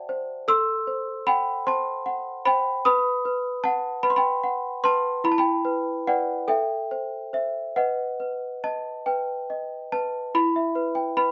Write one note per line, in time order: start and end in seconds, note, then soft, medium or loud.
0.00 0.44 F#4 medium
0.00 0.09 C5 medium
0.00 0.51 D5 medium
0.00 0.51 E5 medium
0.00 0.51 F#5 medium
0.00 0.51 G5 medium
0.00 0.51 A5 medium
0.09 0.48 C5 medium
0.48 2.81 A4 medium
0.48 1.24 C6 medium
0.48 1.27 E6 loud
0.87 1.50 C5 medium
1.27 1.90 F#5 medium
1.27 1.64 G5 medium
1.27 1.66 B5 medium
1.67 2.30 C5 medium
1.67 2.43 A5 medium
1.67 2.46 C6 medium
2.06 2.70 F#5 medium
2.45 2.85 C5 medium
2.45 2.83 G5 medium
2.45 2.85 B5 loud
2.85 3.24 B4 medium
2.85 3.61 B5 medium
2.85 3.64 D#6 loud
3.25 3.89 B4 medium
3.64 4.02 F#5 medium
3.64 4.04 A5 medium
4.03 4.68 B4 medium
4.03 4.11 B5 medium
4.10 4.17 C6 medium
4.16 4.80 G5 medium
4.16 4.83 B5 medium
4.44 5.08 F#5 medium
4.84 5.25 B4 medium
4.84 5.23 A5 medium
4.84 5.25 C6 loud
5.24 6.45 E4 medium
5.24 5.32 B5 medium
5.32 5.39 A5 medium
5.38 6.04 G5 medium
5.38 6.07 B5 medium
5.65 6.06 B4 medium
6.07 6.45 B4 soft
6.07 6.47 D5 medium
6.07 6.49 F#5 medium
6.07 6.45 G5 soft
6.48 7.72 A4 medium
6.48 7.33 E5 medium
6.48 7.77 G5 medium
6.91 7.32 C5 soft
7.33 7.73 C5 soft
7.33 7.73 E5 medium
7.76 8.19 B4 medium
7.76 8.63 D#5 medium
7.76 9.06 F#5 medium
8.20 8.89 B4 soft
8.64 9.32 D#5 soft
8.64 9.07 A5 medium
9.06 9.75 B4 soft
9.06 9.92 G5 medium
9.50 10.18 D#5 soft
9.92 10.34 B4 soft
9.92 10.34 A5 medium
10.35 11.32 E4 medium
10.35 11.16 B5 medium
10.56 10.88 E5 soft
10.75 11.08 B4 soft
10.95 11.28 G5 medium
11.17 11.32 B4 soft
11.17 11.32 B5 medium